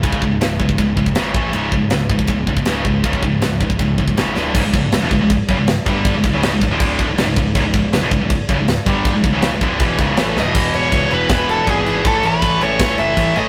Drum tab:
CC |----------------|----------------|----------------|x-x-x-x-x-x-x-x-|
RD |b---b---b---b---|b---b---b---b---|b---b---b---b---|----------------|
SD |----o-------o---|----o-------o---|----o-------o-o-|----o-------o---|
BD |ooo---ooo-oo--o-|--o---ooo-oo--o-|ooo---ooo-oo----|o-o---o-o-o---o-|

CC |x-x-x-x-x-x-x-x-|x-x-x-x-x-x-x-x-|x-x-x-x-x-x-x---|x-x-x-x-x-x-x-x-|
RD |----------------|----------------|----------------|----------------|
SD |----o-------o---|----o-------o---|----o-------o-o-|--------o-------|
BD |o-o---o-o-o---o-|o-o---o-o-o---o-|o-o---o-o-o-----|o---o---o---o---|

CC |x-x-x-x-x-x-x-x-|
RD |----------------|
SD |--------o-------|
BD |o---o---o---o---|